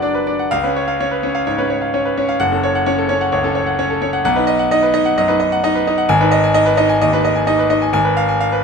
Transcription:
0.00 0.53 F#1 medium
0.00 0.54 F#2 medium
0.00 0.54 F#3 medium
0.00 0.02 D4 medium
0.00 0.22 D4 medium
0.00 0.14 B4 medium
0.00 0.02 D5 medium
0.00 0.22 D5 medium
0.00 0.39 F#5 medium
0.14 0.34 B4 medium
0.27 0.46 D4 medium
0.27 0.46 D5 medium
0.39 0.51 F#5 medium
0.51 1.44 C#2 medium
0.51 0.70 F5 loud
0.64 0.83 C#4 medium
0.64 0.83 B4 medium
0.76 0.95 C#5 medium
0.88 1.07 F5 medium
1.00 1.19 C#4 medium
1.00 1.19 C#5 medium
1.11 1.30 B4 medium
1.23 1.42 C#4 medium
1.23 1.42 C#5 medium
1.35 1.53 F5 medium
1.47 1.65 G#2 medium
1.47 1.65 C#5 medium
1.58 1.77 C#4 medium
1.58 1.77 B4 medium
1.70 1.88 C#5 medium
1.82 2.00 F5 medium
1.94 2.12 C#4 medium
1.94 2.12 C#5 medium
2.05 2.24 B4 medium
2.17 2.35 C#4 medium
2.17 2.35 C#5 medium
2.29 2.40 F5 medium
2.40 3.30 F#1 loud
2.40 2.58 F#5 loud
2.52 2.70 C#4 medium
2.52 2.70 A4 medium
2.63 2.82 C#5 medium
2.75 2.93 F#5 medium
2.86 3.05 C#4 medium
2.86 3.05 C#5 medium
2.98 3.16 A4 medium
3.09 3.28 C#4 medium
3.09 3.27 C#5 medium
3.21 3.39 F#5 medium
3.32 3.51 C#2 medium
3.32 3.51 C#5 medium
3.44 3.62 C#4 medium
3.44 3.62 A4 medium
3.55 3.73 C#5 medium
3.67 3.85 F#5 medium
3.79 3.97 C#4 medium
3.79 3.97 C#5 medium
3.90 4.08 A4 medium
4.01 4.19 C#4 medium
4.01 4.20 C#5 medium
4.13 4.24 F#5 medium
4.25 5.14 B1 loud
4.25 4.43 F#5 loud
4.36 4.54 D#4 medium
4.36 4.54 B4 medium
4.47 4.66 D#5 loud
4.59 4.77 F#5 medium
4.71 4.89 D#4 medium
4.71 4.89 D#5 loud
4.83 5.01 B4 medium
4.94 5.12 D#4 medium
4.94 5.12 D#5 loud
5.05 5.24 F#5 loud
5.18 5.36 F#2 medium
5.18 5.36 D#5 loud
5.28 5.47 D#4 medium
5.28 5.47 B4 medium
5.40 5.58 D#5 medium
5.52 5.70 F#5 medium
5.64 5.82 D#4 loud
5.64 5.82 D#5 loud
5.75 5.93 B4 medium
5.87 6.05 D#4 medium
5.87 6.05 D#5 medium
5.98 6.09 F#5 medium
6.09 6.98 G#1 loud
6.09 6.27 G#5 loud
6.21 6.39 D#4 medium
6.21 6.39 B4 medium
6.31 6.50 D#5 loud
6.44 6.62 G#5 loud
6.54 6.73 D#4 medium
6.54 6.73 D#5 loud
6.66 6.84 B4 medium
6.77 6.96 D#4 loud
6.77 6.96 D#5 loud
6.89 7.08 G#5 loud
7.01 7.20 D#2 medium
7.01 7.20 D#5 loud
7.13 7.31 D#4 medium
7.13 7.31 B4 loud
7.25 7.43 D#5 medium
7.36 7.55 G#5 medium
7.47 7.66 D#4 medium
7.47 7.66 D#5 medium
7.59 7.78 B4 medium
7.70 7.89 D#4 medium
7.70 7.89 D#5 medium
7.82 7.92 G#5 medium
7.93 8.64 G#1 loud
7.93 8.13 G#5 loud
8.05 8.24 B4 medium
8.17 8.36 F5 loud
8.29 8.48 G#5 medium
8.41 8.60 F5 loud
8.52 8.64 B4 medium

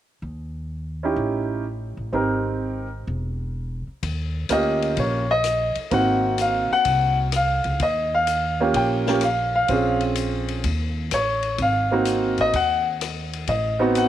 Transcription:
0.22 1.14 D#2 medium
1.03 1.63 C#4 medium
1.03 1.63 D#4 soft
1.03 1.63 E4 soft
1.03 1.64 G4 medium
1.16 1.93 A1 medium
1.97 2.12 A1 medium
2.13 3.04 G#1 medium
2.13 2.86 C4 soft
2.13 2.86 D#4 soft
2.13 2.87 G4 soft
2.13 2.87 A#4 medium
3.07 3.83 E1 medium
3.87 muted upright bass stroke soft
4.03 4.47 D#2 medium
4.03 kick soft
4.03 ride medium
4.49 4.94 D2 medium
4.49 5.23 A#3 medium
4.49 5.23 C#4 medium
4.49 5.23 F4 medium
4.49 5.24 G4 medium
4.49 4.95 D#5 medium
4.49 hi-hat pedal medium
4.49 ride medium
4.82 ride soft
4.97 5.72 A#1 medium
4.97 5.30 C#5 medium
4.97 kick soft
4.97 ride medium
5.31 5.74 D#5 medium
5.44 cross-stick medium
5.44 hi-hat pedal medium
5.44 ride medium
5.75 muted upright bass stroke soft
5.75 ride soft
5.91 6.67 G#1 medium
5.91 7.24 A#3 medium
5.91 7.25 C4 soft
5.91 7.25 D#4 soft
5.91 7.25 F#4 medium
5.91 6.37 F#5 medium
5.91 kick soft
5.91 ride medium
6.38 6.71 F5 medium
6.38 hi-hat pedal medium
6.38 ride medium
6.71 7.16 F#5 loud
6.71 muted upright bass stroke soft
6.85 7.61 C2 medium
6.85 kick soft
6.85 ride medium
7.32 cross-stick medium
7.32 hi-hat pedal medium
7.32 ride medium
7.36 7.79 F5 medium
7.64 7.79 C#2 medium
7.64 ride soft
7.80 8.71 D#2 medium
7.80 8.13 D#5 medium
7.80 kick soft
7.80 ride medium
8.15 8.58 F5 medium
8.27 hi-hat pedal medium
8.27 ride medium
8.60 9.04 A#3 medium
8.60 9.05 C#4 medium
8.60 9.05 F4 medium
8.60 9.05 G4 medium
8.74 9.65 A#1 medium
8.74 9.20 G5 medium
8.74 kick soft
8.74 ride medium
9.06 9.22 A#3 medium
9.06 9.22 C#4 medium
9.06 9.22 F4 medium
9.06 9.22 G4 medium
9.06 snare soft
9.21 9.54 F5 medium
9.21 cross-stick medium
9.21 hi-hat pedal medium
9.21 ride medium
9.55 9.99 F5 medium
9.68 10.60 A#1 medium
9.68 10.64 C4 medium
9.68 10.65 C#4 medium
9.68 10.65 F4 soft
9.68 10.65 G#4 medium
9.68 kick soft
9.68 ride medium
10.01 ride soft
10.15 hi-hat pedal medium
10.15 ride medium
10.48 ride soft
10.64 11.08 D#2 medium
10.64 kick soft
10.64 ride medium
11.11 11.56 A1 medium
11.11 11.57 C#5 medium
11.11 cross-stick medium
11.11 hi-hat pedal medium
11.11 ride medium
11.43 ride soft
11.58 12.34 G#1 medium
11.58 12.36 F5 medium
11.58 kick soft
11.58 ride medium
11.91 12.51 A#3 medium
11.91 12.51 C4 medium
11.91 12.52 D#4 soft
11.91 12.52 F#4 medium
12.05 hi-hat pedal medium
12.05 ride medium
12.38 12.52 A1 medium
12.38 12.54 D#5 medium
12.38 ride soft
12.53 13.44 D#2 medium
12.53 12.86 F#5 medium
12.53 kick soft
12.53 ride medium
13.01 cross-stick medium
13.01 hi-hat pedal medium
13.01 ride medium
13.33 ride soft
13.47 14.08 A1 medium
13.47 13.93 D#5 medium
13.47 kick soft
13.47 ride medium
13.79 14.08 B3 medium
13.79 14.08 C4 medium
13.79 14.08 D#4 medium
13.79 14.08 F#4 medium
13.95 14.08 F#5 medium
13.95 hi-hat pedal medium
13.95 ride medium

